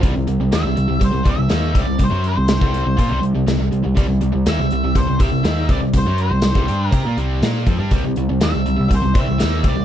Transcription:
0.02 C2 C3 G3, kick, closed hi-hat
0.15 C2 C3 G3
0.27 C2 C3 G3, closed hi-hat
0.40 C2 C3 G3
0.52 D#2 D#3 A#3 E5, snare, closed hi-hat, tambourine
0.65 C2 C3 G3
0.75 C2 C3 G3, closed hi-hat
0.88 C2 C3 G3
0.99 C2 C3 G3, kick, closed hi-hat
1.04 C5
1.11 C2 C3 G3
1.23 C2 C3 G3, kick, closed hi-hat
1.29 E5
1.37 C2 C3 G3
1.49 D#2 D#3 A#3 D#4, snare, closed hi-hat, tambourine
1.73 C2 C3 G3, kick, closed hi-hat
1.80 D5
1.86 C2 C3 G3
1.99 C2 C3 G3, kick, closed hi-hat
2.04 C5
2.10 F#2 F#3 C#4 F#4
2.24 C5, closed hi-hat
2.35 C2 C3 G3
2.48 snare, closed hi-hat, tambourine
2.60 C2 C3 G3 C4, kick
2.74 closed hi-hat
2.85 C2 C3 G3
2.97 A#2 A#3 F4, kick, closed hi-hat
3.09 C2 C3 G3
3.21 C2 C3 G3, closed hi-hat
3.35 C2 C3 G3
3.47 C2 C3 G3, snare, closed hi-hat, tambourine
3.59 C2 C3 G3
3.72 C2 C3 G3, closed hi-hat
3.84 C2 C3 G3
3.96 C2 C3 G3, kick, closed hi-hat
4.08 C2 C3 G3
4.21 C2 C3 G3, closed hi-hat
4.33 C2 C3 G3
4.46 D#2 D#3 A#3 E5, snare, closed hi-hat, tambourine
4.59 C2 C3 G3
4.71 C2 C3 G3, closed hi-hat
4.83 C2 C3 G3
4.95 C2 C3 G3 C5, kick, closed hi-hat
5.07 C2 C3 G3
5.19 C2 C3 G3 E5, kick, closed hi-hat
5.31 C2 C3 G3
5.43 D#2 D#3 A#3 D#4, snare, closed hi-hat, tambourine
5.68 C2 C3 G3 D5, kick, closed hi-hat
5.81 C2 C3 G3
5.93 C2 C3 G3 C5, kick, closed hi-hat
6.06 F#2 F#3 C#4 F#4
6.18 C5, closed hi-hat
6.30 C2 C3 G3
6.42 snare, closed hi-hat, tambourine
6.54 C2 C3 G3, kick, snare
6.66 G2 G3 D4 G4, closed hi-hat
6.88 A#4
6.92 C3 C4 G4, kick, closed hi-hat
7.05 A#2 A#3 F4
7.17 C2 C3 G3 C4, closed hi-hat
7.42 A#2 A#3 F4 A#4, snare, closed hi-hat, tambourine
7.66 F2 F3 C4, kick, closed hi-hat
7.79 G2 G3 D4
7.91 C2 C3 G3, kick, closed hi-hat
8.04 C2 C3 G3
8.16 C2 C3 G3, closed hi-hat
8.29 C2 C3 G3
8.40 D#2 D#3 A#3 E5, snare, closed hi-hat, tambourine
8.53 C2 C3 G3
8.66 C2 C3 G3, closed hi-hat
8.76 C2 C3 G3
8.89 C2 C3 G3, kick, closed hi-hat
8.95 C5
9.02 C2 C3 G3
9.14 C2 C3 G3, kick, closed hi-hat
9.20 E5
9.28 C2 C3 G3
9.38 D#3 A#3 D#4, snare, closed hi-hat, tambourine
9.43 D#2
9.64 C2 C3 G3 D5, kick, closed hi-hat
9.76 C2 C3 G3

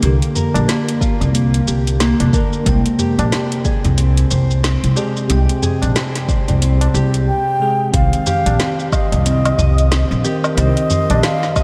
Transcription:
Already playing: A#3 F4 G4 A#4
0.00 C2 D3 A#3, closed hi-hat, shaker
0.05 G4
0.22 closed hi-hat, shaker
0.35 A#4, tabla ge, shaker
0.54 A#1, closed hi-hat, tabla na, shaker
0.68 A#3, snare, closed hi-hat, shaker
0.89 closed hi-hat, shaker
1.01 F4, kick, tabla tin, shaker
1.20 C2, closed hi-hat, tabla tin, tabla ge, shaker
1.34 A#3, closed hi-hat, shaker
1.54 closed hi-hat, shaker
1.67 C2 G4, tabla tin, shaker
1.87 closed hi-hat, shaker
2.00 A#3, snare, closed hi-hat, shaker
2.20 C2, closed hi-hat, tabla na, tabla ge, shaker
2.32 D3 A#3 A#4, kick, tabla na, shaker
2.53 shaker
2.64 C2 C3 G#3 C4, kick, closed hi-hat, shaker
2.68 G5
2.86 closed hi-hat, shaker
2.99 G4, tabla ge, shaker
3.19 A#1, closed hi-hat, tabla na, shaker
3.31 C4, snare, closed hi-hat, shaker
3.52 closed hi-hat, shaker
3.64 G#4, kick, tabla tin, shaker
3.84 C2, closed hi-hat, tabla tin, tabla ge, shaker
3.97 C4, closed hi-hat, shaker
4.17 closed hi-hat, shaker
4.30 C2 C5, tabla ge, shaker
4.51 shaker
4.63 C4, snare, closed hi-hat, shaker
4.84 C2, closed hi-hat, shaker
4.96 C3 G#3 G4 G#4, tabla tin, shaker
5.17 shaker
5.28 C2 C3 G#3 C4, closed hi-hat, shaker
5.32 G5
5.49 closed hi-hat, shaker
5.62 G#4, tabla ge, shaker
5.82 A#1, closed hi-hat, tabla na, shaker
5.95 C4, snare, closed hi-hat, shaker
6.16 snare, closed hi-hat, shaker
6.28 C5, kick, tabla tin, shaker
6.48 C2, closed hi-hat, tabla tin, tabla ge, shaker
6.61 C4, closed hi-hat, shaker
6.81 closed hi-hat, tabla na, shaker
6.94 C2 G4, tabla tin, shaker
7.14 closed hi-hat, shaker
7.27 G5
7.60 C3 G#3 G#4
7.92 C2 D#3 C4 F5, kick, closed hi-hat, shaker
7.96 G4
8.13 closed hi-hat, shaker
8.26 G4, tabla ge, shaker
8.46 A#1, closed hi-hat, tabla na, shaker
8.59 C4, snare, closed hi-hat, shaker
8.79 shaker
8.92 C5 D#5, kick, low woodblock, shaker
9.12 C2, closed hi-hat, tabla tin, tabla ge, shaker
9.26 C4, closed hi-hat, shaker
9.45 closed hi-hat, low woodblock, shaker
9.58 C2 D#5, tabla tin, tabla ge, shaker
9.78 closed hi-hat, shaker
9.91 C4, snare, closed hi-hat, shaker
10.11 A#1, shaker
10.24 D#3 C4 G4 A#4, shaker
10.44 tabla tin, low woodblock, shaker
10.55 C2 D#3 C4 D#5, closed hi-hat, shaker
10.59 G4
10.77 closed hi-hat, shaker
10.90 C5, tabla tin, tabla ge, shaker
11.10 A#1, closed hi-hat, tabla na, shaker
11.23 C4 F5, snare, closed hi-hat, shaker
11.43 snare, shaker
11.56 D#5, kick, low woodblock, shaker

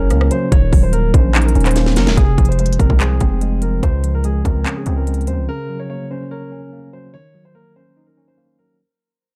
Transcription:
Already playing: F#1 C#3 F#3 A#3 C#4 A#4 C#5
0.10 C#2 A#3, cross-stick, closed hi-hat
0.21 cross-stick
0.31 F#3 C5, closed hi-hat
0.52 D#1 D#3 C#5, kick, closed hi-hat
0.73 D#1 F#3, kick, open hi-hat
0.83 C5
0.93 A#3 A#4, closed hi-hat
1.14 A#1 C#4 C5, kick, closed hi-hat
1.35 D#4, clap, closed hi-hat
1.42 A#4, closed hi-hat
1.49 closed hi-hat
1.55 D#1 C#4, closed hi-hat
1.60 closed hi-hat
1.66 C5, clap, closed hi-hat
1.71 closed hi-hat
1.76 A#3, snare, closed hi-hat
1.86 snare
1.96 F#1 F#3 A#4, snare, closed hi-hat
2.07 D#1, snare
2.17 F1 C3 G#4, kick, closed hi-hat
2.38 F1 F3, kick, closed hi-hat
2.45 C5, closed hi-hat
2.52 closed hi-hat
2.59 G#3 C5, closed hi-hat
2.66 closed hi-hat
2.73 closed hi-hat
2.79 F1 C4 A#4, kick, closed hi-hat
2.90 C2, kick
3.00 G#4 C5, clap, closed hi-hat
3.20 F1 C4, kick, closed hi-hat
3.41 G#3, closed hi-hat
3.62 F3 A#4, closed hi-hat
3.83 C#2 C#3 C5, kick, closed hi-hat
4.04 F3, closed hi-hat
4.15 A#4
4.24 G#3 G#4, closed hi-hat
4.45 C#2 C4 A#4, kick, closed hi-hat
4.66 C#4, clap, closed hi-hat
4.76 G#4
4.86 C#2 C4, closed hi-hat
4.97 A#4
5.07 G#3, closed hi-hat
5.14 closed hi-hat
5.21 closed hi-hat
5.27 D#2 F3 C5, closed hi-hat
5.38 C#2
5.48 C#3 A#4
5.69 F#3
5.80 C#5
5.90 A#3 C#5
6.11 C#4 C5
6.31 A#4 C#5
6.52 C#4
6.72 A#3
6.93 F#3 C5
7.14 D#3 C#5
7.35 F#3
7.45 C5
7.55 A#3 A#4
7.76 C#4 C5
7.97 D#4
8.07 A#4
8.17 C#4
8.28 C5
8.38 A#3
8.59 F#3 A#4

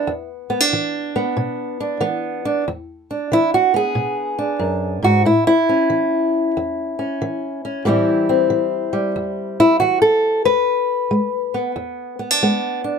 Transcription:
Already playing: B3 D4 E4
0.07 E2
0.50 B3
0.60 D4
0.73 E3
1.16 B3
1.37 B2
1.80 D4
2.00 E3 B3
2.45 D4
2.68 E2
3.11 D4
3.32 E3 E4
3.54 F#4
3.74 B3 G#4
3.95 B2
4.38 D4
4.59 F#2
5.03 G#2 F#4
5.25 A2 E4
5.47 E4
5.69 C#4
5.90 E3
6.57 E2
6.99 C#4
7.22 E3
7.65 C#4
7.85 A2 E3 G3 C4 E4
8.29 C4
8.50 E3
8.93 G3
9.16 E2
9.60 E4
9.80 E3 F#4
10.02 A4
10.45 E2 B4
11.11 G#3
11.54 B3
11.76 E2
12.19 B3
12.31 D4
12.43 G#3 B3
12.84 D4

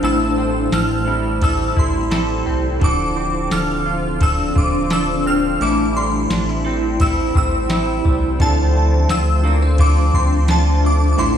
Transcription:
Already playing: C4 C5 A5
0.02 A1 A2 E3 G3 C4 E4 A4 G5 E6, ride
0.38 C4
0.72 A1 A4 F6, snare, ride, tambourine
1.06 G3 C4 E4 A4
1.41 G3 C4 E4 A4 E6, kick, ride
1.77 A1 E4 C6, kick
2.11 G3 C4 E4 A4, snare, ride, tambourine
2.46 C2 C4
2.80 D1 D3 F3 C4 D4 A4 C5 F5, kick, ride
2.84 D4 A4 D6
3.16 C4
3.51 D1 A4 F6, snare, ride, tambourine
3.86 F4
4.20 F3 C4 D4 A4 E6, kick, ride
4.56 D1 F4 D6, kick
4.90 F3 C4 D4 A4 E6, snare, ride, tambourine
5.26 C4 F6
5.60 A1 A2 E3 G3 C4 E4 A4 C5 G5 D6, ride
5.97 G3 C6
6.30 A1 D4, snare, ride, tambourine
6.49 E4
6.65 G3 C4 E4 A4
7.00 G3 C4 E4 A4 E6, kick, ride
7.35 A1 C4 E6, kick
7.69 G3 C4 E4 A4, snare, ride, tambourine
8.05 C2 G3, kick
8.39 D2 D3 F3 C4 D4 F4 A4 F5 A5, kick, ride
8.75 A3
9.09 D2 F4 E6, snare, ride, tambourine
9.44 A#3 C4 D4 A4
9.62 C4
9.78 F3 C4 D4 F4 A4 D6, kick, ride
10.14 D2 C4 C6, kick
10.48 F3 C4 D4 F4 A4 A5, snare, ride, tambourine
10.84 A3 D6
11.13 D6
11.18 A1 A2 E3 G3 C4 E4 A4 G5 C6, ride

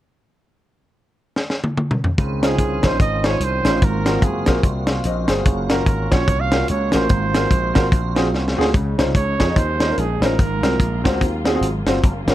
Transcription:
1.36 snare
1.50 snare
1.64 high tom
1.77 high tom
1.91 mid tom
2.04 floor tom
2.18 C#2 C#3 D#3 C4 C#4 F4, kick, closed hi-hat
2.42 C#4 D#4 F4 G#4 C5, snare, closed hi-hat
2.58 C2, kick, closed hi-hat
2.83 A#1 C#4 D#4 F4 C5, kick, snare, closed hi-hat
3.00 G#1 D#5, kick, closed hi-hat
3.24 C#4 D#4 F4 C5 C#5, snare, closed hi-hat
3.40 C2 C5, closed hi-hat
3.65 A1 C#4 D#4 F4 C5, snare, closed hi-hat
3.82 G#1 G#2 A#3 C4 F4 F#4 A#4, kick, closed hi-hat
4.06 C4 F4 F#4 A#4, snare, closed hi-hat
4.22 F#1 G#4, kick, closed hi-hat
4.46 A#1 C4 F4 F#4 A#4, kick, snare, closed hi-hat
4.63 C2, kick, closed hi-hat
4.87 F5, snare, closed hi-hat
5.04 A#1 C5 D#5, closed hi-hat
5.28 G1 G#4 C5, snare, closed hi-hat
5.45 F#1 A#3 C#4, kick, closed hi-hat
5.69 C#4 F4 F#4 A#4, snare, closed hi-hat
5.86 G#1, kick, closed hi-hat
6.11 A#1 C#4 F4 F#4 C#5, kick, snare, closed hi-hat
6.27 C2, kick, closed hi-hat
6.40 F5
6.52 C#4 F4 F#4 A#4, snare, closed hi-hat
6.68 C#2 C#5, closed hi-hat
6.92 A1 C#4 F4 F#4 A#4 C5, snare, closed hi-hat
7.09 G#1 G#2 A#3 C4, kick, closed hi-hat
7.34 C4 F4 F#4 A#4, snare, closed hi-hat
7.51 A#1, kick, closed hi-hat
7.74 G#1 C4 F4 F#4 A#4, kick, snare, closed hi-hat
7.92 A#1, kick, closed hi-hat
8.16 C4 F4 F#4 G#4, snare, closed hi-hat
8.33 C2, snare
8.48 snare
8.57 D2 C4 F4 F#4 G#4
8.61 snare
8.73 C#2 C#3 F3 G#3 C#4 D#4, kick, closed hi-hat
8.98 C2 C#4 D#4 F4 C5, snare, closed hi-hat
9.15 C#2 C#5, kick, closed hi-hat
9.38 F2 C#4 D#4 F4 G#4, kick, snare, closed hi-hat
9.48 C#4 D#4 F4 D#5
9.56 D#2 C5, kick, closed hi-hat
9.80 C#4 D#4 F4 D#5, snare, closed hi-hat
9.90 C#4 D#4 F4 A#4
9.97 A#1 G#4, closed hi-hat
10.21 A1 C#4 D#4 F4 C5, snare, closed hi-hat
10.25 A#4
10.38 G#1 G#2 F#3 A#3 F4, kick, closed hi-hat
10.62 C2 C4 F4 F#4 A#4, snare, closed hi-hat
10.80 A#1, kick, closed hi-hat
11.04 C#2 C4 F4 F#4 C5, kick, snare, closed hi-hat
11.13 C4 F4 F#4 C5
11.21 D#2, kick, closed hi-hat
11.45 C4 F4 F#4 G#4, snare, closed hi-hat
11.54 C4 F4 F#4 G#4
11.61 G#1, closed hi-hat
11.86 G1 C4 F4 F#4 C5, snare, closed hi-hat
12.03 F#1 C#4 F4, kick, closed hi-hat
12.27 G#1 C#4 F4 F#4 A#4, snare, closed hi-hat

